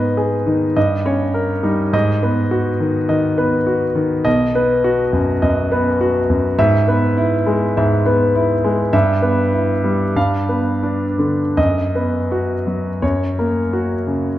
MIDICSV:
0, 0, Header, 1, 2, 480
1, 0, Start_track
1, 0, Tempo, 585366
1, 1587, Time_signature, 4, 2, 24, 8
1, 7816, Tempo, 652174
1, 8776, Tempo, 740741
1, 9736, Tempo, 695249
1, 11164, End_track
2, 0, Start_track
2, 0, Title_t, "Grand piano"
2, 0, Program_c, 0, 0
2, 0, Control_c, 0, 64, 127
2, 0, Note_on_c, 0, 44, 56
2, 0, Note_on_c, 0, 59, 44
2, 0, Note_on_c, 0, 71, 44
2, 0, Note_on_c, 0, 75, 65
2, 142, Note_on_c, 0, 68, 49
2, 281, Note_off_c, 0, 71, 0
2, 283, Note_off_c, 0, 59, 0
2, 382, Note_on_c, 0, 51, 44
2, 382, Note_on_c, 0, 63, 44
2, 529, Note_off_c, 0, 68, 0
2, 595, Note_off_c, 0, 44, 0
2, 624, Note_off_c, 0, 51, 0
2, 624, Note_off_c, 0, 63, 0
2, 627, Note_off_c, 0, 75, 0
2, 627, Note_on_c, 0, 43, 54
2, 627, Note_on_c, 0, 75, 65
2, 638, Control_c, 0, 64, 0
2, 768, Control_c, 0, 64, 127
2, 864, Note_on_c, 0, 61, 49
2, 868, Note_on_c, 0, 73, 51
2, 1008, Note_off_c, 0, 75, 0
2, 1100, Note_on_c, 0, 70, 48
2, 1246, Note_off_c, 0, 61, 0
2, 1248, Note_off_c, 0, 73, 0
2, 1337, Note_on_c, 0, 63, 49
2, 1338, Note_on_c, 0, 55, 46
2, 1488, Note_off_c, 0, 70, 0
2, 1560, Note_off_c, 0, 43, 0
2, 1584, Note_off_c, 0, 55, 0
2, 1584, Note_off_c, 0, 63, 0
2, 1584, Note_on_c, 0, 44, 60
2, 1587, Note_on_c, 0, 75, 73
2, 1601, Control_c, 0, 64, 0
2, 1720, Control_c, 0, 64, 127
2, 1826, Note_on_c, 0, 59, 49
2, 1829, Note_on_c, 0, 71, 49
2, 1969, Note_off_c, 0, 75, 0
2, 2060, Note_on_c, 0, 66, 55
2, 2204, Note_off_c, 0, 59, 0
2, 2205, Note_off_c, 0, 71, 0
2, 2296, Note_on_c, 0, 51, 50
2, 2442, Note_off_c, 0, 66, 0
2, 2509, Note_off_c, 0, 44, 0
2, 2521, Note_off_c, 0, 51, 0
2, 2533, Note_on_c, 0, 75, 54
2, 2534, Note_on_c, 0, 51, 50
2, 2769, Note_on_c, 0, 59, 49
2, 2770, Note_on_c, 0, 71, 53
2, 2913, Note_off_c, 0, 75, 0
2, 2914, Note_off_c, 0, 51, 0
2, 3007, Note_on_c, 0, 66, 52
2, 3147, Note_off_c, 0, 59, 0
2, 3147, Note_off_c, 0, 71, 0
2, 3241, Note_on_c, 0, 51, 50
2, 3390, Note_off_c, 0, 66, 0
2, 3482, Note_on_c, 0, 75, 77
2, 3483, Note_on_c, 0, 35, 63
2, 3488, Note_off_c, 0, 51, 0
2, 3504, Control_c, 0, 64, 0
2, 3641, Control_c, 0, 64, 127
2, 3730, Note_on_c, 0, 59, 51
2, 3732, Note_on_c, 0, 71, 55
2, 3875, Note_off_c, 0, 75, 0
2, 3972, Note_on_c, 0, 66, 54
2, 4113, Note_off_c, 0, 59, 0
2, 4114, Note_off_c, 0, 71, 0
2, 4205, Note_on_c, 0, 42, 50
2, 4354, Note_off_c, 0, 66, 0
2, 4418, Note_off_c, 0, 35, 0
2, 4436, Note_off_c, 0, 42, 0
2, 4445, Note_on_c, 0, 75, 59
2, 4448, Note_on_c, 0, 42, 53
2, 4687, Note_on_c, 0, 59, 55
2, 4688, Note_on_c, 0, 71, 57
2, 4827, Note_off_c, 0, 75, 0
2, 4828, Note_off_c, 0, 42, 0
2, 4927, Note_on_c, 0, 66, 57
2, 5067, Note_off_c, 0, 59, 0
2, 5067, Note_off_c, 0, 71, 0
2, 5163, Note_on_c, 0, 42, 49
2, 5306, Note_off_c, 0, 66, 0
2, 5400, Note_off_c, 0, 42, 0
2, 5400, Note_on_c, 0, 44, 68
2, 5400, Note_on_c, 0, 76, 79
2, 5413, Control_c, 0, 64, 0
2, 5524, Control_c, 0, 64, 127
2, 5641, Note_on_c, 0, 71, 55
2, 5643, Note_on_c, 0, 59, 52
2, 5781, Note_off_c, 0, 76, 0
2, 5881, Note_on_c, 0, 64, 62
2, 6026, Note_off_c, 0, 71, 0
2, 6027, Note_off_c, 0, 59, 0
2, 6120, Note_on_c, 0, 56, 53
2, 6272, Note_off_c, 0, 64, 0
2, 6339, Note_off_c, 0, 44, 0
2, 6373, Note_on_c, 0, 44, 59
2, 6373, Note_on_c, 0, 76, 61
2, 6512, Note_off_c, 0, 56, 0
2, 6607, Note_on_c, 0, 59, 52
2, 6609, Note_on_c, 0, 71, 54
2, 6753, Note_off_c, 0, 76, 0
2, 6850, Note_on_c, 0, 64, 56
2, 6989, Note_off_c, 0, 59, 0
2, 6990, Note_off_c, 0, 71, 0
2, 7088, Note_on_c, 0, 56, 51
2, 7231, Note_off_c, 0, 64, 0
2, 7299, Note_off_c, 0, 44, 0
2, 7322, Note_on_c, 0, 43, 61
2, 7322, Note_on_c, 0, 76, 76
2, 7326, Note_off_c, 0, 56, 0
2, 7339, Control_c, 0, 64, 0
2, 7472, Control_c, 0, 64, 127
2, 7563, Note_on_c, 0, 59, 46
2, 7564, Note_on_c, 0, 71, 53
2, 7712, Note_off_c, 0, 76, 0
2, 7812, Note_on_c, 0, 64, 51
2, 7948, Note_off_c, 0, 59, 0
2, 7949, Note_off_c, 0, 71, 0
2, 8043, Note_on_c, 0, 55, 49
2, 8184, Note_off_c, 0, 64, 0
2, 8251, Note_off_c, 0, 43, 0
2, 8280, Note_off_c, 0, 55, 0
2, 8280, Note_on_c, 0, 43, 55
2, 8282, Note_on_c, 0, 77, 64
2, 8291, Control_c, 0, 64, 0
2, 8395, Control_c, 0, 64, 127
2, 8521, Note_on_c, 0, 71, 50
2, 8523, Note_on_c, 0, 59, 43
2, 8673, Note_off_c, 0, 77, 0
2, 8772, Note_on_c, 0, 62, 46
2, 8910, Note_off_c, 0, 71, 0
2, 8911, Note_off_c, 0, 59, 0
2, 9003, Note_on_c, 0, 50, 43
2, 9151, Note_off_c, 0, 62, 0
2, 9225, Note_off_c, 0, 43, 0
2, 9250, Note_off_c, 0, 50, 0
2, 9254, Note_on_c, 0, 42, 53
2, 9254, Note_on_c, 0, 75, 65
2, 9267, Control_c, 0, 64, 0
2, 9375, Control_c, 0, 64, 127
2, 9499, Note_on_c, 0, 71, 43
2, 9502, Note_on_c, 0, 59, 41
2, 9642, Note_off_c, 0, 75, 0
2, 9736, Note_on_c, 0, 66, 45
2, 9881, Note_off_c, 0, 71, 0
2, 9883, Note_off_c, 0, 59, 0
2, 9977, Note_on_c, 0, 54, 43
2, 10127, Note_off_c, 0, 66, 0
2, 10198, Note_off_c, 0, 42, 0
2, 10223, Note_off_c, 0, 54, 0
2, 10223, Note_on_c, 0, 73, 55
2, 10224, Note_on_c, 0, 42, 50
2, 10236, Control_c, 0, 64, 0
2, 10355, Control_c, 0, 64, 127
2, 10475, Note_on_c, 0, 58, 43
2, 10475, Note_on_c, 0, 70, 45
2, 10614, Note_off_c, 0, 73, 0
2, 10713, Note_on_c, 0, 66, 42
2, 10850, Note_off_c, 0, 58, 0
2, 10850, Note_off_c, 0, 70, 0
2, 10945, Note_on_c, 0, 49, 42
2, 11084, Note_off_c, 0, 66, 0
2, 11147, Note_off_c, 0, 42, 0
2, 11164, Note_off_c, 0, 49, 0
2, 11164, End_track
0, 0, End_of_file